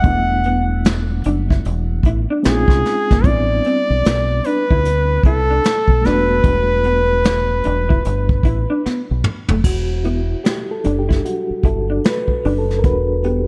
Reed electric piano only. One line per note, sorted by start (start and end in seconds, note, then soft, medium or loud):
0.02 2.39 G3 medium
0.02 2.40 A3 medium
0.02 2.40 B3 medium
0.02 2.41 D4 medium
0.07 2.41 E4 medium
2.43 3.23 G#3 medium
2.43 3.23 C4 medium
2.43 3.24 C#4 medium
2.43 3.24 D#4 medium
2.43 2.52 E4 medium
2.52 3.28 F4 medium
3.22 5.99 G3 medium
3.22 5.99 B3 soft
3.22 6.00 C4 medium
3.22 6.01 D4 medium
3.27 6.01 E4 medium
6.02 9.19 G3 medium
6.02 9.19 A3 medium
6.02 9.20 B3 medium
6.02 9.21 D4 medium
6.07 9.21 F#4 medium
9.65 10.05 F#4 medium
10.04 10.41 E4 medium
10.44 10.71 G4 medium
10.71 10.98 A4 medium
10.84 12.00 F#3 soft
10.84 12.00 G3 soft
10.84 12.01 D4 medium
10.99 11.25 G4 medium
11.25 11.62 F#4 medium
11.65 12.02 A4 medium
12.05 12.59 B4 medium
12.58 12.68 A4 medium
12.79 12.84 A#4 medium
12.84 13.47 G3 soft
12.84 13.47 D4 medium
12.84 13.47 F#4 soft
12.84 13.26 B4 medium
13.25 13.47 G4 medium